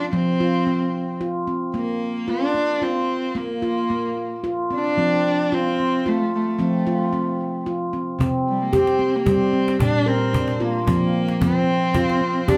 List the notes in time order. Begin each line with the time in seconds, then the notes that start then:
Already playing: F4
0.12 F3 C4
0.40 F4
0.67 C4
1.21 F4
1.47 C4
1.74 A#3
2.28 D4 F4
2.54 A#3
2.82 C4 F4
3.35 A#3
3.62 F4
3.90 A#3
4.44 F4
4.71 C4
4.75 D4
4.97 F3 C4
5.52 C4 F4
5.79 C4
6.06 A3 F4
6.35 A3
6.59 F3 C4
6.87 F4
7.13 C4
7.66 F4
7.93 C4
8.19 C3 C4, cajon bass
8.49 G3
8.62 A#3
8.73 C4 G4, cajon bass
8.87 cajon slap
8.99 C4
9.14 A#3, cajon slap
9.26 G3 C4 G4, cajon bass
9.53 C4
9.68 cajon slap
9.79 A#2 D4, cajon bass
10.06 C4 A#4
10.33 D4, cajon bass
10.48 cajon slap
10.60 A#3 F4
10.75 cajon slap
10.87 F3 A#3 C4, cajon bass
11.28 cajon slap
11.41 F3 C4, cajon bass
11.94 F4, cajon bass
12.09 cajon slap
12.21 C4
12.36 cajon slap
12.48 C4 D4 G4, cajon bass